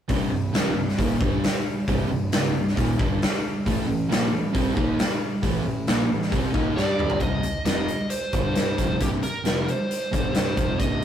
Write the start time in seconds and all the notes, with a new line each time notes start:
0.08 C1 C2 G2 C3, kick, open hi-hat
0.31 C1 C2 G2
0.53 C#1 C#2 G#2 C#3, snare, open hi-hat
0.76 C1 C2 G2
0.89 snare
0.98 D#1 D#2 A#2 D#3, kick, open hi-hat
1.20 G1 G2 D3 G3, kick
1.44 snare, open hi-hat
1.88 C1 C2 G2 C3, kick, open hi-hat
2.11 C1 C2 G2
2.32 C#1 C#2 G#2 C#3, snare, open hi-hat
2.56 C1 C2 G2
2.68 snare
2.77 D#1 D#2 A#2 D#3, kick, open hi-hat
2.99 G1 G2 D3 G3, kick
3.22 snare, open hi-hat
3.66 A1 A2 E3 A3, kick, open hi-hat
3.88 A1 A2 E3
4.09 A#1 A#2 F3 A#3, snare, open hi-hat
4.33 A1 A2 E3
4.54 C2 C3 G3 C4, kick, open hi-hat
4.76 D#2 D#3 A#3 D#4, kick
4.99 snare, open hi-hat
5.42 A1 A2 E3 A3, kick, open hi-hat
5.65 A1 A2 E3
5.87 A#1 A#2 F3 A#3, snare, open hi-hat
6.09 A1 A2 E3
6.22 snare
6.30 C2 C3 G3 C4, kick, open hi-hat
6.53 D#2 D#3 A#3 D#4, kick
6.74 G2 G3 D4 G4 D5, snare
6.99 mid tom
7.10 floor tom
7.20 C1 C2 G2 C3 D#5, kick, closed hi-hat
7.42 muted overdriven electric guitar stroke, muted picked electric bass stroke, closed hi-hat
7.65 F1 F2 C3 F3 D#5, snare, closed hi-hat
7.88 closed hi-hat
8.10 C5, closed hi-hat
8.33 G1 G2 D3 G3, kick, closed hi-hat
8.55 C1 C2 G2 C5, snare, closed hi-hat
8.78 F1 F2 C3 F3, kick, closed hi-hat
9.00 C1 C2 G2 C3 G4, kick, closed hi-hat
9.23 A#4, muted picked electric bass stroke, muted overdriven electric guitar stroke, closed hi-hat
9.45 F1 F2 C3 F3, snare, closed hi-hat
9.68 C5, closed hi-hat
9.91 closed hi-hat
10.11 G1 G2 D3 G3, kick, closed hi-hat
10.34 C1 C2 G2 C5, snare, closed hi-hat
10.57 F1 F2 C3 F3, kick, closed hi-hat
10.79 C1 C2 G2 C3 D#5, kick, closed hi-hat